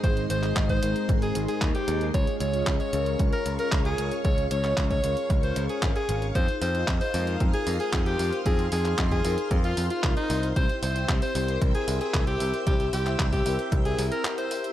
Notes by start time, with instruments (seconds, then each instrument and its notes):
Already playing: string machine G#3 C5 D#5 C6
0.04 picked electric bass G#1, analog polysynth C4 D#4 G#4 C5, alto saxophone C5, kick, closed hi-hat
0.17 closed hi-hat
0.30 picked electric bass G#1, alto saxophone C5, closed hi-hat
0.43 analog polysynth C4 D#4 G#4 D#5, clap, closed hi-hat
0.56 picked electric bass G#1, kick, clap, closed hi-hat
0.69 alto saxophone C5, kick, closed hi-hat
0.83 picked electric bass G#1, analog polysynth G#3 C4 D#4 A#4, closed hi-hat
0.96 closed hi-hat
1.09 picked electric bass G#1, kick, closed hi-hat
1.22 alto saxophone G#4, closed hi-hat
1.35 picked electric bass G#1, closed hi-hat
1.48 alto saxophone G#4, closed hi-hat
1.62 picked electric bass D#2, kick, clap, closed hi-hat
1.75 alto saxophone G4, closed hi-hat
1.88 picked electric bass D#2, closed hi-hat
2.01 closed hi-hat
2.14 picked electric bass C#2, analog polysynth C#4 F4 G#4 C#5, string machine C#5 F5 C#6, alto saxophone C#5, kick, closed hi-hat
2.27 closed hi-hat
2.40 picked electric bass C#2, alto saxophone C#5, closed hi-hat
2.54 analog polysynth C#4 F4 G#4 D#5, closed hi-hat
2.67 picked electric bass C#2, kick, clap, closed hi-hat
2.80 alto saxophone C#5, closed hi-hat
2.93 picked electric bass C#2, analog polysynth C#4 F4 G#4 A#4, closed hi-hat
3.06 closed hi-hat
3.19 picked electric bass C#2, kick, closed hi-hat
3.33 alto saxophone A#4, closed hi-hat
3.46 picked electric bass C#2, closed hi-hat
3.59 alto saxophone A#4, closed hi-hat
3.72 picked electric bass C#2, kick, clap, closed hi-hat
3.85 alto saxophone G#4, closed hi-hat
3.98 picked electric bass C#2, closed hi-hat
4.12 closed hi-hat
4.25 picked electric bass C#2, analog polysynth C#4 F4 G#4 C#5, alto saxophone C#5, kick, closed hi-hat
4.38 closed hi-hat
4.51 picked electric bass C#2, alto saxophone C#5, closed hi-hat
4.64 analog polysynth C#4 F4 G#4 D#5, clap, closed hi-hat
4.77 picked electric bass C#2, kick, clap, closed hi-hat
4.90 alto saxophone C#5, kick, closed hi-hat
5.04 picked electric bass C#2, analog polysynth C#4 F4 G#4 A#4, closed hi-hat
5.17 closed hi-hat
5.30 picked electric bass C#2, kick, closed hi-hat
5.43 alto saxophone C5, closed hi-hat
5.56 picked electric bass C#2, closed hi-hat
5.69 alto saxophone G#4, closed hi-hat
5.82 picked electric bass G#1, kick, clap, closed hi-hat
5.96 alto saxophone G#4, closed hi-hat
6.09 picked electric bass G#1, closed hi-hat
6.22 closed hi-hat
6.35 picked electric bass F2, analog polysynth D#4 F4 G#4 C5, alto saxophone C5, string machine C5 C6 D#6, kick, closed hi-hat
6.48 closed hi-hat
6.62 picked electric bass F2, alto saxophone C5, open hi-hat
6.75 analog polysynth D#4 F4 G#4 D#5, closed hi-hat
6.88 picked electric bass F2, kick, clap, closed hi-hat
7.01 alto saxophone C5, open hi-hat
7.14 picked electric bass F2, analog polysynth G#3 D#4 F4 A#4, open hi-hat
7.27 closed hi-hat
7.40 picked electric bass F2, kick, closed hi-hat
7.53 alto saxophone G#4, closed hi-hat
7.67 picked electric bass F2, open hi-hat
7.80 alto saxophone G#4, closed hi-hat
7.93 picked electric bass F2, kick, clap, closed hi-hat
8.06 alto saxophone G4, closed hi-hat
8.19 picked electric bass F2, open hi-hat
8.33 closed hi-hat
8.46 picked electric bass F2, analog polysynth D#4 F4 G#4 C5, alto saxophone G#4, string machine F6, kick, closed hi-hat
8.59 closed hi-hat
8.72 picked electric bass F2, alto saxophone G#4, open hi-hat
8.85 analog polysynth D#4 F4 G#4 D#5, clap, closed hi-hat
8.98 picked electric bass F2, kick, clap, closed hi-hat
9.11 alto saxophone G#4, kick, closed hi-hat
9.25 picked electric bass F2, analog polysynth D#4 F4 G#4 A#4, open hi-hat
9.38 closed hi-hat
9.51 picked electric bass F2, kick, closed hi-hat
9.64 alto saxophone F4, closed hi-hat
9.77 picked electric bass F2, open hi-hat
9.90 alto saxophone F4, closed hi-hat
10.04 picked electric bass C2, kick, clap, closed hi-hat
10.17 alto saxophone D#4, closed hi-hat
10.30 picked electric bass C2, open hi-hat
10.43 closed hi-hat
10.56 picked electric bass C2, analog polysynth C4 E4 G4 C5, alto saxophone C5, string machine E5 G5 E6, kick, closed hi-hat
10.69 closed hi-hat
10.83 picked electric bass C2, alto saxophone C5, open hi-hat
10.96 analog polysynth C4 E4 G4 E5, closed hi-hat
11.09 picked electric bass C2, kick, clap, closed hi-hat
11.22 alto saxophone C5, open hi-hat
11.35 picked electric bass C2, analog polysynth C4 E4 G4 A#4, open hi-hat
11.48 closed hi-hat
11.61 picked electric bass C2, kick, closed hi-hat
11.75 alto saxophone G#4, closed hi-hat
11.88 picked electric bass C2, open hi-hat
12.01 alto saxophone G#4, closed hi-hat
12.14 picked electric bass C2, kick, clap, closed hi-hat
12.27 alto saxophone G4, closed hi-hat
12.40 picked electric bass C2, open hi-hat
12.54 closed hi-hat
12.67 picked electric bass C2, analog polysynth C4 E4 G4 C5, alto saxophone G4, kick, closed hi-hat
12.80 closed hi-hat
12.93 picked electric bass C2, alto saxophone G4, open hi-hat
13.06 analog polysynth C4 E4 G4 E5, clap, closed hi-hat
13.19 picked electric bass C2, kick, clap, closed hi-hat
13.33 alto saxophone G4, kick, open hi-hat
13.46 picked electric bass C2, analog polysynth C4 E4 G4 A#4, open hi-hat
13.59 closed hi-hat
13.72 picked electric bass C2, kick, closed hi-hat
13.85 alto saxophone G#4, closed hi-hat
13.98 picked electric bass C2, open hi-hat
14.12 alto saxophone A#4, closed hi-hat
14.25 clap, closed hi-hat
14.38 alto saxophone C5, closed hi-hat
14.51 open hi-hat
14.64 closed hi-hat